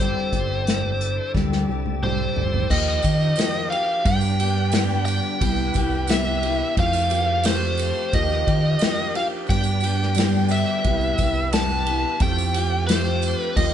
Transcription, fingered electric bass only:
0.00 G1
0.33 G1
1.35 D2
1.69 C2
2.36 G1
2.70 D#2
3.04 D#3
4.05 G2
5.41 C2
5.75 C2
6.77 F2
8.13 D#2
8.47 D#3
9.50 G2
10.85 C2
11.19 C2
12.20 F2
13.56 D#2

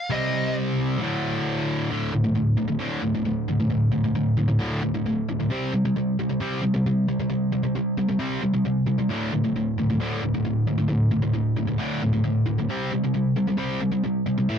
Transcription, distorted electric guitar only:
0.10 C3 G3 C4
0.99 D2 A2
1.04 D3
1.90 D2 A2 D3
2.13 D2 A2
2.24 D2 A2
2.35 D2 A2
2.57 D2 A2
2.68 D2 A2
2.79 D2 A2 D3
3.02 D2 A2
3.14 D2 A2
3.25 D2 A2
3.48 D2 A2
3.60 D2 A2
3.70 D2 A2
3.92 D2 A2
4.04 D2 A2
4.15 D2 A2
4.37 D2 A2
4.48 D2 A2
4.59 D2 A2 D3
4.82 D2 A2
4.94 D2 A2
5.06 D2 A2
5.29 D2 A2
5.40 D2 A2
5.50 C3 G3 C4
5.73 C3 G3
5.85 C3 G3
5.96 C3 G3
6.19 C3 G3
6.29 C3 G3
6.40 C3 G3 C4
6.62 C3 G3
6.74 C3 G3
6.86 C3 G3
7.08 C3 G3
7.19 C3 G3
7.30 C3 G3
7.52 C3 G3
7.63 C3 G3
7.75 C3 G3
7.97 C3 G3
8.09 C3 G3
8.19 C3 G3 C4
8.42 C3 G3
8.54 C3 G3
8.65 C3 G3
8.86 C3 G3
8.98 C3 G3
9.09 D2 A2 D3
9.33 D2 A2
9.44 D2 A2
9.56 D2 A2
9.78 D2 A2
9.90 D2 A2
10.00 D2 A2 D3
10.23 D2 A2
10.35 D2 A2
10.45 D2 A2
10.67 D2 A2
10.78 D2 A2
10.88 D2 A2
11.11 D2 A2
11.22 D2 A2
11.34 D2 A2
11.57 D2 A2
11.67 D2 A2
11.78 D2 A2 D3
12.02 D2 A2
12.13 D2 A2
12.24 D2 A2
12.46 D2 A2
12.58 D2 A2
12.69 C3 G3 C4
12.91 C3 G3
13.04 C3 G3
13.14 C3 G3
13.36 C3 G3
13.47 C3 G3
13.57 C3 G3 C4
13.81 C3 G3
13.92 C3 G3
14.04 C3 G3
14.26 C3 G3
14.38 C3 G3
14.49 A2 E3 A3

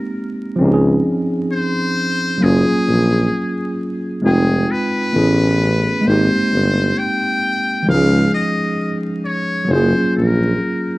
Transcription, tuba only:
0.61 C#2
2.43 F#1
2.69 A#1
2.88 A#1
4.24 F1
5.15 A1
6.06 G#1
6.32 G1
6.52 G1
7.88 C#2
9.70 F#1
9.96 A#1
10.16 A#1

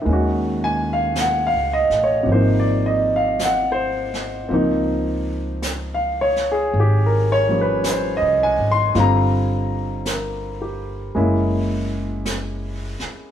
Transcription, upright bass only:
0.06 D#2
1.54 C#2
1.90 A1
2.26 G#1
4.51 C#2
6.74 G#1
8.22 C2
8.58 G#1
8.95 G1
11.16 F#1
13.02 muted upright bass stroke

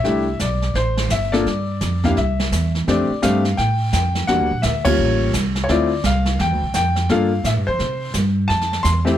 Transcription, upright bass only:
0.04 C2
0.40 B1
0.74 A1
1.09 G1
1.46 G2
1.81 F2
2.17 C2
2.52 E2
2.87 F2
3.09 muted upright bass stroke
3.23 G2
3.58 A2
3.93 F2
4.28 E2
4.40 D2
4.51 A#1
4.64 D2
4.99 A1
5.34 C2
5.68 D2
6.04 C2
6.39 E2
6.51 D2
6.62 C2
6.74 F2
7.09 G2
7.44 A2
7.56 G2
7.68 F2
7.79 C3
8.14 G2
8.49 F2
8.84 E2

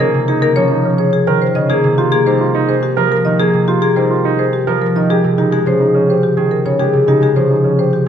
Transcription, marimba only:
0.00 A#4
0.28 G#4
0.42 A#4
0.56 C#5
0.98 C#5
1.13 G#4
1.42 C5
1.55 D#5
1.70 G#4
1.98 G4
2.12 G#4
2.26 C5
2.69 C5
2.83 G4
3.12 A#4
3.25 D#5
3.40 G#4
3.68 G4
3.82 G#4
3.96 C5
4.39 C5
4.53 G4
4.82 A#4
4.96 D#5
5.10 G#4
5.38 G4
5.52 G#4
5.67 C5
6.10 C5
6.23 G4
6.51 A#4
6.66 C#5
6.79 G#4
7.08 G4
7.23 G#4
7.36 C5
7.79 C5
7.93 G4

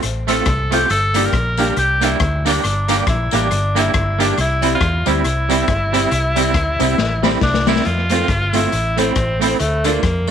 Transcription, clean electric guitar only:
0.27 A3 C4 F4
0.71 A3 C4 F4
1.14 A#3 D4 G4
1.58 A#3 D4 G4
2.01 A#3 D4 G4
2.45 A#3 D4 G4
2.88 A#3 D4 G4
3.32 A#3 D4 G4
3.75 A#3 D4 G4
4.18 A#3 D4 G4
4.62 G3 C4 E4
5.06 G3 C4 E4
5.49 G3 C4 E4
5.92 G3 C4 E4
6.36 G3 C4 E4
6.79 G3 C4 E4
7.23 G3 C4 E4
7.67 G3 C4 E4
8.10 A3 C4 F4
8.53 A3 C4 F4
8.97 A3 C4 E4
9.40 A3 C4 E4
9.84 A3 D4 F4

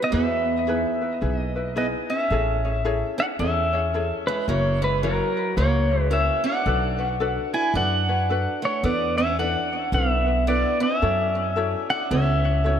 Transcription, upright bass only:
0.13 E2
1.22 B1
2.30 A1
3.39 E2
4.48 F#1
5.57 C#2
6.66 B1
7.74 F#2
8.83 E2
9.92 B1
11.02 F#2
12.11 C#2

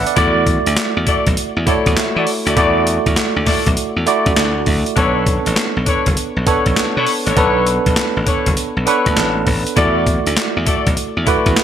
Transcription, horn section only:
0.17 E4 F#4 A4 D5
1.06 E4 F#4 A4 D5
1.66 E4 F#4 A4 D5
2.16 E4 F#4 A4 D5
2.46 E4 F#4 A4 D5
2.56 E4 F#4 A4 D5
3.46 E4 F#4 A4 D5
4.06 E4 F#4 A4 D5
4.96 D4 A4 B4 C#5
5.86 D4 A4 B4 C#5
6.46 D4 A4 B4 C#5
6.96 D4 A4 B4 C#5
7.26 D4 A4 B4 C#5
7.36 D4 A4 B4 C#5
8.26 D4 A4 B4 C#5
8.86 D4 A4 B4 C#5
9.76 E4 F#4 A4 D5
10.66 E4 F#4 A4 D5
11.26 E4 F#4 A4 D5

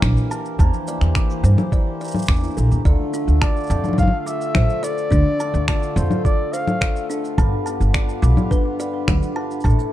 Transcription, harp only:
Already playing: E3 A#3 A#4
0.02 E4
0.31 A#4
0.58 E3 A#4
0.87 A#3
1.16 E4
1.44 A#4
1.72 E4
2.00 A#4
2.29 D4
2.43 E4
2.58 A#4
2.85 D3 A4
3.14 D4
3.42 F4
3.70 G4
3.85 A4
3.99 F4
4.27 A4
4.55 F4
4.84 A4
5.12 D3 A4
5.41 D4
5.68 F4
5.97 A4
6.25 F4
6.53 A4
6.81 F4
7.10 A4
7.38 G2 B4
7.67 B3
7.95 D4
8.23 B4
8.51 D4
8.80 B4
9.08 D4
9.37 B4
9.65 A2 A4

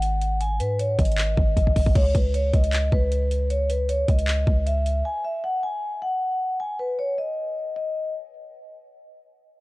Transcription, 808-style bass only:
Already playing: G#1
0.60 G#2
0.99 G#1
1.37 G#1
1.57 G#1
1.95 C#2
2.15 C#2
2.54 C#2
2.92 C#2
4.08 C#2
4.47 C#2

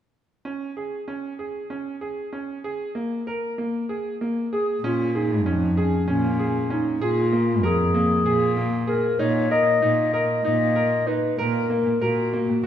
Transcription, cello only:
4.82 A#2
5.45 F2
6.08 A#2
7.01 A#2
7.63 F2
8.26 A#2
9.19 A#2
9.82 A#2
10.45 A#2
11.38 A#2
12.02 A#2

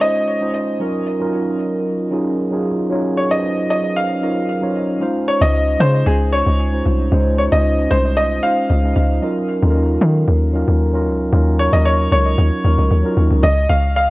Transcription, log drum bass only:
5.41 C#2
5.80 C#3
6.06 C#2
6.46 C#2
6.86 C2
7.12 C#2
7.52 C#2
7.91 C2
8.70 C#2
8.96 C#2
9.63 D#2
10.01 D#3
10.28 D#2
10.68 D#2
11.07 C#2
11.33 D#2
11.73 D#2
12.12 C#2
12.38 D#2
12.64 D#2
12.78 C#2
12.91 D#2
13.17 D#2
13.31 C#2
13.43 C#2
13.69 C#2

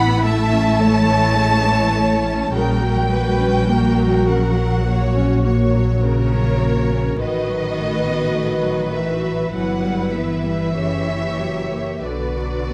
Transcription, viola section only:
Already playing: E3 E4
0.25 A3
0.53 C#4
0.80 A3
1.09 E3
1.37 C#3
1.66 E3
1.95 A3
2.25 C#4
2.53 C#3 F#4
2.83 F#3
3.12 A#3
3.41 C#4
3.70 A#3
4.00 F#3
4.29 C#3
4.59 F#3
4.87 A#3
5.16 C#4
5.46 A#3
5.76 F#3
6.06 C#3
6.34 F#3
6.63 A#3
6.93 C#4
7.21 D#3 F#4
7.50 F#3
7.77 A3
8.06 B3
8.34 A3
8.64 F#3
8.93 D#3
9.24 F#3
9.53 E3 E4
9.85 G3
10.16 B3
10.46 G3
10.78 C#3 G4
11.10 E3
11.41 F#3
11.72 A#3
12.05 D3 F#4
12.37 F#3
12.69 B3

